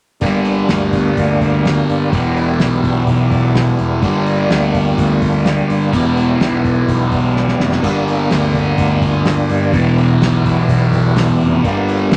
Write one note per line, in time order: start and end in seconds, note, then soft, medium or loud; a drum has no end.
0.21 0.63 G1 medium
0.21 2.11 G2 medium
0.21 2.12 D3 medium
0.21 2.10 G3 medium
0.21 2.10 A#3 medium
0.21 2.10 D4 soft
0.21 7.80 G4 medium
0.21 kick medium
0.21 open hi-hat medium
0.25 2.15 G3 medium
0.45 open hi-hat soft
0.69 1.11 D2 medium
0.69 snare medium
0.69 open hi-hat medium
0.93 kick medium
0.93 open hi-hat soft
1.17 1.79 D2 medium
1.17 kick medium
1.17 open hi-hat medium
1.41 kick medium
1.41 open hi-hat soft
1.65 snare medium
1.65 open hi-hat medium
1.89 2.10 G2 medium
1.89 open hi-hat soft
2.12 2.54 E1 medium
2.12 4.02 E2 medium
2.12 4.03 B2 medium
2.12 4.03 E3 medium
2.12 12.17 G3 medium
2.12 4.01 B3 medium
2.12 4.01 E4 medium
2.12 kick loud
2.12 open hi-hat medium
2.37 open hi-hat soft
2.60 3.02 B1 medium
2.60 snare medium
2.60 open hi-hat medium
2.84 kick medium
2.84 open hi-hat soft
3.07 3.70 B1 medium
3.07 kick medium
3.07 open hi-hat medium
3.31 kick medium
3.31 open hi-hat soft
3.55 snare medium
3.55 open hi-hat medium
3.79 4.00 E2 medium
3.79 open hi-hat soft
4.02 4.44 G1 medium
4.02 5.92 G2 medium
4.02 5.93 D3 medium
4.02 5.95 G3 medium
4.02 5.92 A#3 medium
4.02 5.92 D4 medium
4.02 kick loud
4.02 open hi-hat medium
4.26 open hi-hat soft
4.50 4.92 D2 medium
4.50 snare loud
4.50 open hi-hat medium
4.74 kick medium
4.74 open hi-hat soft
4.98 5.60 D2 medium
4.98 kick medium
4.98 open hi-hat medium
5.22 kick medium
5.22 open hi-hat soft
5.46 snare medium
5.46 open hi-hat medium
5.70 5.91 G2 medium
5.70 open hi-hat soft
5.92 6.35 E1 medium
5.92 7.81 E2 medium
5.92 7.83 B2 medium
5.92 7.83 E3 medium
5.92 7.83 B3 medium
5.92 7.82 E4 medium
5.92 kick medium
5.92 open hi-hat medium
6.17 open hi-hat soft
6.41 6.83 B1 medium
6.41 snare loud
6.41 open hi-hat medium
6.65 kick medium
6.65 open hi-hat soft
6.88 7.51 B1 medium
6.88 kick medium
6.88 open hi-hat medium
7.12 kick medium
7.12 open hi-hat soft
7.36 snare soft
7.48 snare soft
7.60 7.81 F1 medium
7.60 snare medium
7.72 snare medium
7.82 8.25 G1 medium
7.82 9.72 G2 medium
7.82 9.73 D3 medium
7.82 9.75 G3 medium
7.82 9.72 A#3 medium
7.82 9.72 D4 medium
7.82 12.17 G4 medium
7.82 kick loud
7.82 open hi-hat medium
7.82 splash medium
8.08 open hi-hat soft
8.31 8.73 D2 medium
8.31 snare medium
8.31 open hi-hat medium
8.54 kick medium
8.54 open hi-hat soft
8.78 9.41 D2 medium
8.78 kick medium
8.78 open hi-hat medium
9.02 kick medium
9.02 open hi-hat soft
9.25 snare medium
9.25 open hi-hat medium
9.50 9.71 G2 medium
9.50 open hi-hat soft
9.73 10.16 E1 medium
9.73 11.63 E2 medium
9.73 11.63 B2 medium
9.73 11.64 E3 medium
9.73 11.63 B3 medium
9.73 11.63 E4 medium
9.73 kick medium
9.73 open hi-hat medium
9.98 open hi-hat soft
10.22 10.64 B1 medium
10.22 snare medium
10.22 open hi-hat medium
10.45 kick medium
10.45 open hi-hat soft
10.69 11.32 B1 medium
10.69 kick medium
10.69 open hi-hat medium
10.93 kick medium
10.93 open hi-hat soft
11.17 snare medium
11.17 open hi-hat medium
11.41 11.62 F1 medium
11.41 open hi-hat soft
11.63 12.06 G1 medium
11.63 12.17 G2 medium
11.63 12.17 D3 medium
11.63 12.17 G3 medium
11.63 12.17 A#3 medium
11.63 12.17 D4 medium
11.63 kick medium
11.63 open hi-hat medium
11.88 open hi-hat soft
12.11 12.17 D2 medium
12.11 snare medium
12.11 open hi-hat medium